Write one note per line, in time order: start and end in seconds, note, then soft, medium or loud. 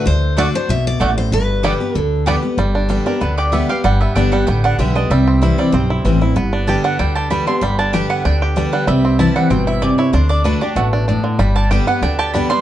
0.05 0.46 D2 medium
0.05 0.36 D3 medium
0.05 0.36 C5 medium
0.37 0.53 D3 medium
0.37 0.46 A3 medium
0.37 0.54 A3 medium
0.37 0.45 A3 medium
0.37 0.54 D4 loud
0.37 0.41 D4 medium
0.37 0.47 F#4 medium
0.37 0.53 F#4 loud
0.37 0.47 D5 medium
0.37 0.53 D5 loud
0.37 0.47 F#5 loud
0.54 0.69 D4 soft
0.54 0.68 F#4 medium
0.54 0.70 C5 medium
0.69 0.96 B1 medium
0.69 0.99 B2 medium
0.69 0.85 E5 loud
0.87 1.16 D5 loud
1.00 1.27 A1 medium
1.00 1.31 A2 medium
1.00 1.10 A3 loud
1.00 1.08 A3 medium
1.00 1.04 D4 medium
1.00 1.10 F#4 loud
1.00 1.10 D5 medium
1.00 1.10 F#5 medium
1.18 1.33 C5 medium
1.32 1.71 G1 medium
1.32 1.92 G2 loud
1.32 1.97 B4 medium
1.63 1.79 D3 medium
1.63 1.80 G3 loud
1.63 1.71 G3 medium
1.63 1.73 B3 medium
1.63 1.80 B3 medium
1.63 1.71 B3 medium
1.63 1.71 D4 medium
1.63 1.73 G4 medium
1.63 1.79 G4 loud
1.63 1.73 D5 medium
1.63 1.74 G5 loud
1.80 1.95 B3 medium
1.80 1.95 G4 medium
1.95 2.35 D2 medium
1.95 2.25 D3 medium
1.95 2.23 A4 medium
2.26 2.42 D3 medium
2.26 2.43 G3 medium
2.26 2.34 G3 medium
2.26 2.36 B3 medium
2.26 2.43 B3 loud
2.26 2.35 B3 medium
2.26 2.35 D4 medium
2.26 2.36 G4 medium
2.26 2.41 G4 loud
2.26 2.36 D5 medium
2.26 2.36 G5 loud
2.43 2.58 B3 soft
2.43 2.57 G4 medium
2.57 2.97 G1 medium
2.57 3.18 G2 medium
2.57 2.89 G3 medium
2.75 3.05 D4 medium
2.89 3.05 D3 medium
2.89 3.06 G3 loud
2.89 3.84 G3 medium
2.89 3.06 B3 medium
2.89 3.05 G4 medium
3.06 3.21 B3 soft
3.06 3.50 D4 medium
3.06 3.20 G4 medium
3.06 3.20 A#4 medium
3.21 3.61 D2 medium
3.21 3.51 D3 medium
3.21 3.52 B3 medium
3.21 3.37 B4 medium
3.38 3.69 G4 medium
3.38 3.52 D5 medium
3.52 3.68 D3 medium
3.52 3.69 G3 medium
3.52 3.69 B3 medium
3.52 3.98 B3 medium
3.52 3.68 G4 medium
3.52 3.69 E5 medium
3.69 3.84 B3 soft
3.69 3.84 G4 medium
3.69 5.10 G4 medium
3.69 3.84 F5 loud
3.84 4.04 G1 medium
3.84 4.44 G2 medium
3.84 4.32 G3 medium
3.84 4.00 F#5 loud
4.01 4.45 B3 medium
4.01 4.15 E5 medium
4.15 4.42 G1 medium
4.15 4.32 D3 medium
4.15 4.32 G3 medium
4.15 4.32 B3 loud
4.15 4.61 D4 medium
4.15 4.31 G4 loud
4.15 4.31 G5 medium
4.32 5.11 G3 medium
4.32 4.47 B3 medium
4.32 4.47 G4 medium
4.32 4.46 F#5 medium
4.47 4.74 A1 medium
4.47 4.77 D3 medium
4.47 4.93 B3 medium
4.47 4.63 G5 loud
4.64 4.95 D4 medium
4.64 4.78 F#5 loud
4.78 5.05 B1 medium
4.78 4.95 D3 medium
4.78 5.11 D3 medium
4.78 4.95 G3 loud
4.78 4.95 B3 medium
4.78 4.94 G4 medium
4.78 4.95 E5 medium
4.95 5.11 B3 medium
4.95 5.11 D4 medium
4.95 5.10 G4 medium
4.95 5.10 D#5 medium
5.10 5.50 C2 loud
5.10 5.71 C3 medium
5.10 5.59 G3 medium
5.10 5.55 E5 medium
5.28 5.71 C4 medium
5.42 5.58 E3 medium
5.42 5.58 G3 medium
5.42 5.58 C4 loud
5.42 5.87 E4 medium
5.42 5.57 E4 loud
5.58 6.99 G3 medium
5.58 5.73 C4 medium
5.58 5.73 E4 medium
5.58 5.73 D5 medium
5.72 6.00 B1 medium
5.72 6.33 G2 medium
5.72 6.18 C4 medium
5.72 6.18 C5 medium
5.90 6.21 E4 medium
6.04 6.31 A1 medium
6.04 6.21 E3 medium
6.04 6.37 E3 medium
6.04 6.21 G3 loud
6.04 6.21 C4 medium
6.04 6.20 E4 medium
6.21 6.36 C4 soft
6.21 6.36 E4 medium
6.21 6.37 E4 medium
6.36 6.76 G1 medium
6.36 6.96 G2 medium
6.36 7.76 B3 medium
6.53 6.83 D4 medium
6.67 6.98 D3 medium
6.67 6.98 G3 medium
6.67 6.98 B3 medium
6.67 6.98 G4 loud
6.67 7.16 G4 medium
6.67 6.84 A5 medium
6.84 7.28 D4 medium
6.84 6.99 F#5 medium
6.99 7.39 D2 medium
6.99 7.29 D3 medium
6.99 7.62 G3 medium
6.99 7.15 G5 medium
7.15 7.93 G4 medium
7.15 7.30 A5 loud
7.30 7.46 D3 medium
7.30 7.47 G3 medium
7.30 7.47 B3 medium
7.30 7.75 D4 medium
7.30 7.46 G4 medium
7.30 7.47 B5 medium
7.47 7.91 D3 medium
7.47 7.62 B3 medium
7.47 7.61 G4 medium
7.47 7.62 C6 loud
7.61 8.01 G1 medium
7.61 8.22 G2 medium
7.61 8.73 G3 medium
7.61 7.78 B5 medium
7.79 8.22 D4 medium
7.79 7.93 A5 medium
7.93 8.23 D3 medium
7.93 8.24 G3 medium
7.93 8.24 B3 medium
7.93 8.38 G4 medium
7.93 8.24 G4 medium
7.93 8.09 G5 medium
8.10 8.53 B3 medium
8.10 8.24 F#5 medium
8.25 8.64 D2 medium
8.25 8.55 D3 medium
8.25 8.56 D4 medium
8.25 8.70 G5 medium
8.42 8.85 G4 medium
8.56 8.86 D3 medium
8.56 8.86 G3 medium
8.56 8.87 B3 medium
8.56 8.88 D4 medium
8.56 8.87 G4 medium
8.73 8.86 G3 medium
8.73 8.87 F#5 medium
8.87 9.27 C2 medium
8.87 9.48 C3 medium
8.87 9.32 G3 medium
8.87 9.17 E5 medium
9.05 9.48 C4 medium
9.19 9.35 E3 medium
9.19 9.36 G3 medium
9.19 9.36 C4 medium
9.19 9.64 E4 medium
9.19 9.35 E4 loud
9.19 9.35 A5 loud
9.36 9.79 G3 medium
9.36 9.51 C4 soft
9.36 9.50 E4 medium
9.36 9.50 F#5 medium
9.50 9.90 G1 medium
9.50 9.81 B2 medium
9.50 9.95 C4 medium
9.50 9.67 G5 loud
9.67 9.97 E4 medium
9.67 9.82 E5 medium
9.82 10.12 C3 medium
9.82 10.14 E3 medium
9.82 9.98 D5 medium
9.98 10.14 E4 medium
9.98 10.12 C#5 medium
10.13 10.53 D2 medium
10.13 10.43 D3 medium
10.13 10.30 D4 medium
10.13 10.29 C5 medium
10.29 10.45 D4 medium
10.29 10.44 D5 loud
10.44 10.60 D3 medium
10.44 10.61 A3 loud
10.44 10.61 D4 medium
10.44 10.60 F#4 loud
10.44 10.61 B4 medium
10.61 10.93 D4 medium
10.61 10.77 D4 soft
10.61 10.76 F#4 medium
10.61 10.76 G4 medium
10.75 11.15 A1 medium
10.75 11.06 B2 medium
10.75 11.21 A3 medium
10.75 10.86 F#4 medium
10.93 11.07 D4 medium
11.08 11.38 A2 medium
11.08 11.56 D4 medium
11.24 11.39 D3 medium
11.39 11.79 G1 loud
11.39 12.00 G2 medium
11.39 11.84 G3 medium
11.39 11.55 B5 loud
11.56 11.99 D4 medium
11.56 11.70 A5 loud
11.71 11.87 D3 medium
11.71 11.87 G3 medium
11.71 11.87 B3 loud
11.71 12.16 G4 medium
11.71 11.86 G4 loud
11.71 11.87 G5 medium
11.87 12.31 B3 medium
11.87 12.02 B3 medium
11.87 12.02 G4 medium
11.87 12.02 F#5 medium
12.02 12.42 D2 medium
12.02 12.33 D3 medium
12.02 12.33 D4 medium
12.02 12.18 G5 loud
12.19 12.61 G4 medium
12.19 12.33 A5 loud
12.34 12.50 D3 medium
12.34 12.50 G3 medium
12.34 12.51 B3 loud
12.34 12.61 D4 medium
12.34 12.49 G4 medium
12.34 12.49 B5 medium
12.50 12.61 G3 medium
12.50 12.61 B3 soft
12.50 12.61 G4 medium
12.50 12.61 C6 loud